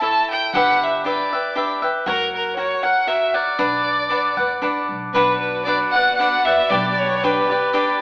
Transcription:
0.01 E4 A4 C#5 E5 A5
0.31 G5
0.53 G1 D4 G4 B4 E5 F#5
0.83 E5
1.04 D4 G4 B4 D5 E5
1.33 G4 B4 E5
1.55 D4 G4 B4 E5
1.82 G4 B4 E5
2.06 F#1 F#4 A#4 C#5 F#5
2.35 A#4
2.56 F#4 A#4 C#5 F#5
2.83 A#4 C#5 F#5
3.07 F#4 A#4 C#5 E5 F#5
3.34 A#4 C#5 D5 F#5
3.59 B1 D4 B4 D5 F#5
4.10 D4 B4 D5 F#5
4.37 F#1 B4 D5 F#5
4.62 A1 D4 B4 D5 F#5
4.89 B1
5.14 B1 B3 D4 F#4 B4 D5 F#5
5.40 B4
5.64 D4 B4 D5 F#5
5.92 D5 F#5
5.96 B4
6.17 D4 B4 D5 F#5
6.21 F#5
6.45 B4 D5 E5 F#5
6.70 B1 D4 G4 B4 D5
7.00 C#5
7.23 D4 G4 B4 D5
7.50 G4 B4 D5
7.73 D4 G4 B4 D5

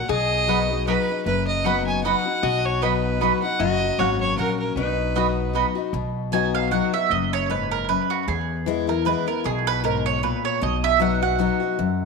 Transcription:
0.09 B1 B2 G#4 D#5
0.47 F#3 B3 D#4 F#4 D#5 B5
0.70 D#4 F#4
0.87 F#3 B3 D#4 F#4 B4 D#5 B5
1.09 D#4 F#4
1.26 F#1 F#2 B4
1.47 D#5
1.65 F#3 B3 D#4 F#4 D#5 F#5 B5
1.86 G#5
2.04 F#3 B3 D#4 F#4 D#5 F#5 B5
2.25 D#4 F#4
2.43 B1 B2 F#4 D#5
2.65 C#5
2.82 F#3 B3 D#4 F#4 B4 D#5 B5
3.21 F#3 B3 D#4 F#4 D#5 B5
3.42 D#4 F#4 F#5
3.60 F#1 F#2 F#4 D#5
3.98 G#1 F#3 A#3 C#4 F#4 C#5 F#5
4.21 C#5
4.37 A#1 F#3 A#3 C#4 F#4 A#4 C#5 F#5
4.59 A#4
4.76 B1 B2 D#4 B4
5.15 F#3 B3 D#4 F#4 D#5 B5
5.54 F#3 B3 D#4 F#4 D#5 B5
5.75 D#4 F#4
5.93 B1 B2
6.32 F#3 B3 D#4 F#4 G#5
6.55 F5
6.71 F#3 B3 D#4 F#4 F#5
6.94 D#4 F#4 E5
7.10 F#1 F#2 D#5
7.33 C#5
7.50 G#2 B4
7.71 A#4
7.89 F#2 B4
8.10 F#4
8.28 E2 G#4
8.66 E3 G#3 B3 E4
8.87 B3 E4 A#4
9.05 E3 G#3 B3 E4 B4
9.27 B3 E4 A#4
9.44 B1 B2 G#4
9.67 B4
9.84 G#2 A#4
10.06 C#5
10.23 A#2 B4
10.45 C#5
10.61 B1 B2 D#5
10.84 E5
11.00 F#3 B3 D#4 F#4 F#5
11.22 D#4 F#4 F#5
11.39 F#3 B3 D#4 F#4
11.60 D#4 F#4
11.79 F#2

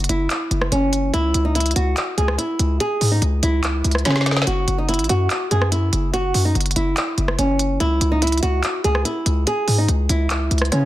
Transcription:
0.04 closed hi-hat
0.09 F#1 E4, closed hi-hat
0.30 clap, closed hi-hat
0.51 F#1, closed hi-hat
0.61 cross-stick
0.72 F#1 C#4, closed hi-hat
0.93 closed hi-hat
1.14 C#2 E4, closed hi-hat
1.34 C#2, closed hi-hat
1.45 D#4
1.55 E4, closed hi-hat
1.60 closed hi-hat
1.66 closed hi-hat
1.71 closed hi-hat
1.76 C#2 F#4, closed hi-hat
1.97 clap, closed hi-hat
2.18 C#2 G#4, closed hi-hat
2.28 cross-stick
2.38 E4, closed hi-hat
2.59 C#2, closed hi-hat
2.80 G#4, closed hi-hat
3.01 G#2, open hi-hat
3.12 D#4
3.22 C#2, closed hi-hat
3.43 C#2 E4, closed hi-hat
3.64 clap, closed hi-hat
3.84 C#2, closed hi-hat
3.91 cross-stick, closed hi-hat
3.98 closed hi-hat
4.05 C#3 C#4, snare, closed hi-hat
4.11 snare
4.16 snare
4.21 snare
4.26 snare, closed hi-hat
4.31 snare
4.37 snare
4.42 snare
4.47 F#1 F#4, closed hi-hat
4.68 F#1, closed hi-hat
4.78 D#4
4.89 E4, closed hi-hat
4.94 closed hi-hat
4.99 A1, closed hi-hat
5.04 closed hi-hat
5.09 F#2 F#4, closed hi-hat
5.30 clap, closed hi-hat
5.51 F#2 G#4, closed hi-hat
5.62 cross-stick
5.72 E4, closed hi-hat
5.93 F#1, closed hi-hat
6.13 F#4, closed hi-hat
6.34 F#2, open hi-hat
6.45 D#4
6.55 F#1, closed hi-hat
6.61 closed hi-hat
6.66 closed hi-hat
6.71 closed hi-hat
6.76 F#1 E4, closed hi-hat
6.97 clap, closed hi-hat
7.18 F#1, closed hi-hat
7.28 cross-stick
7.39 F#1 C#4, closed hi-hat
7.59 closed hi-hat
7.80 C#2 E4, closed hi-hat
8.01 C#2, closed hi-hat
8.12 D#4
8.22 E4, closed hi-hat
8.27 closed hi-hat
8.32 closed hi-hat
8.38 closed hi-hat
8.43 C#2 F#4, closed hi-hat
8.64 clap, closed hi-hat
8.84 C#2 G#4, closed hi-hat
8.95 cross-stick
9.05 E4, closed hi-hat
9.26 C#2, closed hi-hat
9.47 G#4, closed hi-hat
9.68 G#2, open hi-hat
9.78 D#4
9.89 C#2, closed hi-hat
10.09 C#2 E4, closed hi-hat
10.30 clap, closed hi-hat
10.51 C#2, closed hi-hat
10.58 cross-stick, closed hi-hat
10.65 closed hi-hat
10.72 C#3 C#4, cross-stick, closed hi-hat

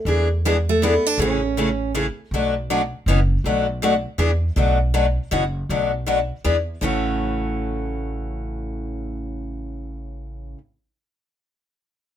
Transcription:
0.05 E2 E3 B3 D4 G#4
0.45 E3 G#3 B3 D4 G#4
0.69 A3
0.82 E3 B3 D4 G#4
1.06 D4
1.18 A1 C#3 E3 A3 C#4 G#4
1.57 C#3 E3 A3 C#4 G#4
1.95 C#3 E3 A3 C#4 G#4
2.31 B1 B2 F#3 A3 D4 F#4
2.70 B2 F#3 A3 D4 F#4
3.06 F#1 B2 E3 B3 C#4 F#4
3.44 B1 B2 F#3 A3 D4 F#4
3.82 B2 F#3 A3 D4 F#4
4.18 E2 E3 B3 D4 G#4
4.56 B1 B2 F#3 A3 D4 F#4
4.94 B2 F#3 A3 D4 F#4
5.31 F#1 B2 E3 B3 C#4 F#4
5.69 B1 B2 F#3 A3 D4 F#4
6.06 B2 F#3 A3 D4 F#4
6.44 E2 E3 B3 D4 G#4
6.81 A1 A2 C#3 E3 A3 C#4 F#4

